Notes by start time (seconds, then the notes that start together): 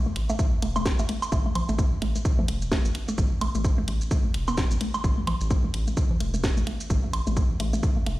Already playing: A1
0.06 A3
0.16 A1, closed hi-hat
0.29 A3, shaker
0.39 A3, kick, shaker
0.62 E1 A3, closed hi-hat
0.76 A3, low woodblock, shaker
0.86 kick, snare, shaker
0.99 A1 A3, shaker
1.09 A3, closed hi-hat
1.22 low woodblock, shaker
1.32 A1 A3, kick, shaker
1.46 A3
1.55 closed hi-hat, low conga, low woodblock
1.69 A1 A3, shaker
1.79 A3, kick, shaker
2.02 A1 A3, closed hi-hat
2.15 A3, shaker
2.25 kick, shaker
2.39 A3, low conga
2.48 E1 A3, closed hi-hat
2.62 shaker
2.72 A3, kick, snare, shaker
2.85 A1 A3, shaker
2.95 closed hi-hat
3.08 A3, shaker
3.18 A1 A3, kick, shaker
3.41 A3, closed hi-hat, low woodblock
3.55 A1 A3, shaker
3.65 kick, shaker
3.78 A3
3.88 A1 A3, closed hi-hat
4.01 shaker
4.11 A3, kick, shaker
4.25 A3
4.34 E1, closed hi-hat
4.48 B3, low woodblock, shaker
4.58 A3, kick, snare, shaker
4.71 A1 A3, shaker
4.81 A3, closed hi-hat
4.94 A3, low woodblock, shaker
5.04 A1, kick, shaker
5.18 A3
5.27 A3, closed hi-hat, low conga, low woodblock
5.41 A1, shaker
5.51 A3, kick, shaker
5.64 A3
5.74 A1, closed hi-hat
5.87 A3, shaker
5.97 A3, kick, shaker
6.11 low conga
6.20 E1 A3, closed hi-hat
6.34 A3, shaker
6.44 kick, snare, shaker
6.57 A1 A3, shaker
6.67 A3, closed hi-hat
6.80 shaker
6.90 A1 A3, kick, shaker
7.04 A3
7.13 closed hi-hat, low woodblock
7.27 A1 A3, shaker
7.37 A3, kick, shaker
7.60 A1 A3, closed hi-hat
7.73 A3, shaker
7.83 kick, shaker
7.97 A3
8.06 E1 A3, closed hi-hat